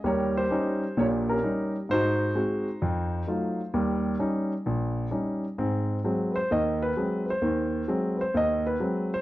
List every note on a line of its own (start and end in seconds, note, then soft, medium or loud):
0.04 0.44 D#2 medium
0.04 0.44 G3 medium
0.04 0.37 G4 medium
0.04 0.94 A#4 medium
0.04 0.34 C#5 medium
0.38 0.99 G4 medium
0.38 1.00 C5 medium
0.51 0.83 G3 medium
0.51 0.83 C#4 medium
0.51 0.83 D#4 medium
0.97 1.37 A#1 medium
0.97 1.37 A#2 medium
0.97 1.30 G4 medium
0.97 1.28 A#4 medium
0.97 1.06 C#5 medium
1.29 1.42 C#4 soft
1.29 1.87 G4 soft
1.29 1.71 A#4 medium
1.43 1.75 G3 medium
1.43 1.75 C#4 soft
1.43 1.75 D#4 medium
1.89 2.29 G#2 medium
1.89 3.26 D#4 medium
1.89 2.34 F#4 medium
1.89 3.71 C5 loud
2.35 2.67 G#3 medium
2.35 2.67 C4 medium
2.35 2.68 F#4 medium
2.82 3.22 F2 medium
3.27 3.60 F#3 medium
3.27 3.60 A3 soft
3.27 3.60 D#4 soft
3.27 3.60 F4 medium
3.74 4.14 D#2 medium
3.74 4.14 G3 medium
4.19 4.52 G3 medium
4.19 4.52 C#4 medium
4.19 4.52 D#4 medium
4.66 5.06 A#1 medium
5.11 5.44 G3 soft
5.11 5.44 C#4 soft
5.11 5.44 D#4 medium
5.58 5.98 G#2 medium
5.58 5.98 C4 medium
6.04 6.36 F#3 medium
6.04 6.37 G#3 medium
6.04 6.37 C4 medium
6.31 6.34 B4 medium
6.36 6.50 C5 medium
6.51 6.91 D#2 medium
6.51 6.90 D#3 medium
6.51 6.81 D#5 medium
6.82 7.24 B4 medium
6.97 7.29 F#3 soft
6.97 7.29 G#3 medium
6.97 7.29 C4 medium
7.26 7.28 B4 medium
7.30 7.86 C5 medium
7.42 7.82 D#2 medium
7.42 7.82 D#3 medium
7.88 8.20 F#3 medium
7.88 8.21 G#3 soft
7.88 8.21 C4 medium
8.17 8.19 B4 medium
8.21 8.35 C5 medium
8.34 8.74 D#2 medium
8.34 8.66 D#5 medium
8.67 9.09 B4 medium
8.80 9.12 F#3 medium
8.80 9.13 G#3 soft
8.80 9.13 C4 medium
9.14 9.22 C5 medium